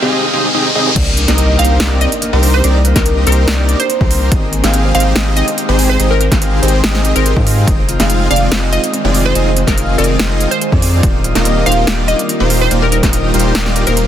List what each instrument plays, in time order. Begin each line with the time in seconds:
Already playing: riser
0.02 supersaw synth C4 D#4 G4 G#4 F5
0.12 supersaw synth C4 D#4 G4 G#4 D#5
0.33 supersaw synth C4 D#4 G4 G#4 D#5
0.54 supersaw synth C4 D#4 G4 G#4 D#5
0.75 supersaw synth C4 D#4 G4 G#4 D#5, high tom
0.86 mid tom
0.96 sub bass C2, ambient pad A#3 C4, harp A#3, supersaw synth C4 D#4 G4 A#4 D5, digital synth lead D5, kick, closed hi-hat, crash, ride, impact
1.07 harp G4
1.17 harp D4, closed hi-hat
1.28 sub bass C2, supersaw synth C4 D#4 G4 A#4 D#5, harp D#4, digital synth lead D#5, snare, closed hi-hat
1.38 harp D#4, closed hi-hat
1.49 harp C4
1.59 sub bass C2, harp A#3, supersaw synth C4 D#4 G4 A#4 C5, digital synth lead C5, synth pluck F5, closed hi-hat
1.65 closed hi-hat
1.70 harp G4
1.80 sub bass C2, supersaw synth C4 D#4 G4 A#4 D5, snare, closed hi-hat
1.91 harp D#4
2.01 harp D#4, synth pluck D#5, closed hi-hat
2.12 harp C4, closed hi-hat
2.22 harp A#3, closed hi-hat
2.33 sub bass C2, supersaw synth C4 D#4 G4 A#4 C5, harp G4, digital synth lead C5
2.43 harp D4, open hi-hat
2.54 harp D#4, synth pluck C5
2.64 sub bass C2, supersaw synth C4 D#4 G4 A#4 D5, harp D#4, digital synth lead D5, closed hi-hat, ride
2.75 harp C4
2.85 harp A#3, closed hi-hat
2.96 sub bass C2, supersaw synth C4 D#4 G4 A#4 D#5, harp G4, synth pluck A#4, digital synth lead D#5, kick, snare, closed hi-hat
3.06 harp D4, closed hi-hat
3.17 harp D#4
3.27 sub bass C2, supersaw synth C4 D#4 G4 A#4 C5, harp D#4, synth pluck A#4, digital synth lead C5, closed hi-hat
3.32 closed hi-hat
3.38 harp C4
3.48 sub bass C2, harp A#3, supersaw synth C4 D#4 G4 A#4 D5, digital synth lead D5, snare, closed hi-hat
3.59 harp G4
3.69 harp D4, closed hi-hat
3.80 harp D#4, synth pluck C5, closed hi-hat
3.90 harp D#4, closed hi-hat
4.00 sub bass C2, harp C4, supersaw synth C4 D#4 G4 A#4 C5, digital synth lead C5, kick
4.11 harp A#3, open hi-hat
4.22 harp G4
4.32 sub bass G#1, ambient pad D#3 G#3 G5, supersaw synth C4 D#4 G4 G#4 D#5, digital synth lead D#5, kick, closed hi-hat, ride
4.42 harp G#4
4.53 harp G#4, closed hi-hat
4.63 sub bass G#1, supersaw synth C4 D#4 G4 G#4 F5, harp D#4, digital synth lead F5, snare, closed hi-hat
4.74 harp C4, closed hi-hat
4.85 harp C5
4.94 sub bass G#1, supersaw synth C4 D#4 G4 G#4 C5, harp G4, digital synth lead C5, synth pluck F5, closed hi-hat
5.00 closed hi-hat
5.05 harp G#4
5.16 sub bass G#1, supersaw synth C4 D#4 G4 G#4 D#5, digital synth lead D#5, snare, closed hi-hat
5.27 harp D#4
5.37 harp C4, synth pluck D#5, closed hi-hat
5.48 harp C5, closed hi-hat
5.58 harp G4, closed hi-hat
5.68 sub bass G#1, supersaw synth C4 D#4 G4 G#4 C5, harp G#4, digital synth lead C5
5.79 harp G#4, open hi-hat
5.89 harp D#4, synth pluck C5
5.99 sub bass G#1, supersaw synth C4 D#4 G4 G#4 D#5, harp C4, digital synth lead D#5, closed hi-hat, ride
6.11 synth pluck A#4, harp C5
6.21 harp G4, synth pluck A#4, closed hi-hat
6.32 sub bass G#1, supersaw synth C4 D#4 G4 G#4 F5, harp G#4, digital synth lead F5, kick, snare, closed hi-hat
6.42 harp G#4, closed hi-hat
6.53 harp D#4
6.62 sub bass G#1, supersaw synth C4 D#4 G4 G#4 C5, harp C4, digital synth lead C5, closed hi-hat
6.68 closed hi-hat
6.74 harp C5
6.84 sub bass G#1, supersaw synth C4 D#4 G4 G#4 D#5, harp G4, digital synth lead D#5, snare, closed hi-hat
6.95 harp G#4, snare
7.05 harp G4, closed hi-hat
7.16 sub bass G#1, supersaw synth C4 D#4 G4 G#4 C5, harp G#4, synth pluck A#4, digital synth lead C5, closed hi-hat
7.26 harp G#4, closed hi-hat
7.36 sub bass G#2, harp C4, supersaw synth C4 D#4 G4 G#4 F5, digital synth lead F5, kick
7.47 harp C5, open hi-hat
7.58 harp C4
7.67 sub bass F1, supersaw synth C4 D#4 F4 G#4 D#5, ambient pad F4, digital synth lead D#5, kick, closed hi-hat, ride
7.79 harp C5
7.89 harp F4, closed hi-hat
7.99 sub bass F1, supersaw synth C4 D#4 F4 G#4 F5, harp G#4, digital synth lead F5, snare, closed hi-hat
8.10 harp G#4, closed hi-hat
8.21 harp D#4
8.30 sub bass F1, supersaw synth C4 D#4 F4 G#4 D5, harp C4, digital synth lead D5, synth pluck F5, closed hi-hat
8.36 closed hi-hat
8.41 harp C5
8.51 sub bass F1, supersaw synth C4 D#4 F4 G#4 D#5, harp F4, digital synth lead D#5, snare, closed hi-hat
8.62 harp G#4
8.72 harp G#4, synth pluck D#5, closed hi-hat
8.83 harp D#4, closed hi-hat
8.93 harp C4, closed hi-hat
9.04 sub bass F1, supersaw synth C4 D#4 F4 G#4 D5, harp C5, digital synth lead D5
9.14 harp F4, open hi-hat
9.25 harp G#4, synth pluck C5
9.35 sub bass F1, supersaw synth C4 D#4 F4 G#4 D#5, harp G#4, digital synth lead D#5, closed hi-hat, ride
9.46 harp D#4
9.56 harp C4, closed hi-hat
9.67 sub bass F1, supersaw synth C4 D#4 F4 G#4 F5, synth pluck A#4, digital synth lead F5, kick, snare, closed hi-hat
9.77 harp F4, closed hi-hat
9.88 harp G#4
9.98 sub bass F1, supersaw synth C4 D#4 F4 G#4 D5, harp G#4, synth pluck A#4, digital synth lead D5, closed hi-hat
10.04 closed hi-hat
10.09 harp D#4
10.19 sub bass F1, harp C4, supersaw synth C4 D#4 F4 G#4 D#5, snare, closed hi-hat
10.30 harp C5
10.40 harp F4, closed hi-hat
10.51 harp G#4, synth pluck C5, closed hi-hat
10.61 harp G#4, closed hi-hat
10.72 sub bass F2, supersaw synth C4 D#4 F4 G#4 D5, harp D#4, digital synth lead D5, kick
10.82 harp C4, open hi-hat
10.93 harp C5
11.03 sub bass D#1, ambient pad G3 D5, supersaw synth A#3 D#4 F4 G4 D5, harp D#4, kick, closed hi-hat, ride
11.14 harp F4
11.24 harp F4, closed hi-hat
11.35 sub bass D#1, supersaw synth A#3 D#4 F4 G4 D#5, harp D4, digital synth lead D#5, snare, closed hi-hat
11.45 harp A#3, closed hi-hat
11.56 harp G4
11.66 sub bass D#1, supersaw synth A#3 D#4 F4 G4 C5, harp D#4, digital synth lead C5, synth pluck F5, closed hi-hat
11.72 closed hi-hat
11.77 harp F4
11.87 sub bass D#1, supersaw synth A#3 D#4 F4 G4 D5, harp F4, digital synth lead D5, snare, closed hi-hat
11.98 harp D4
12.08 harp A#3, synth pluck D#5, closed hi-hat
12.19 harp G4, closed hi-hat
12.29 harp D#4, closed hi-hat
12.40 sub bass D#1, supersaw synth A#3 D#4 F4 G4 C5, harp F4, digital synth lead C5
12.50 harp F4, open hi-hat
12.61 harp D4, synth pluck C5
12.71 sub bass D#1, harp A#3, supersaw synth A#3 D#4 F4 G4 D5, digital synth lead D5, closed hi-hat, ride
12.82 harp G4, synth pluck A#4
12.92 harp D#4, synth pluck A#4, closed hi-hat
13.03 sub bass D#1, supersaw synth A#3 D#4 F4 G4 D#5, digital synth lead D#5, kick, snare, closed hi-hat
13.13 harp F4, closed hi-hat
13.24 harp D4
13.34 sub bass D#1, harp A#3, supersaw synth A#3 D#4 F4 G4 C5, digital synth lead C5, closed hi-hat
13.39 closed hi-hat
13.45 harp G4
13.55 sub bass D#1, supersaw synth A#3 D#4 F4 G4 D5, harp D#4, snare, closed hi-hat
13.66 harp F4, snare
13.76 harp A#4, closed hi-hat
13.87 sub bass D#1, harp A#3, supersaw synth A#3 D#4 F4 G4 C5, synth pluck A#4, digital synth lead C5, closed hi-hat
13.97 harp A#3, closed hi-hat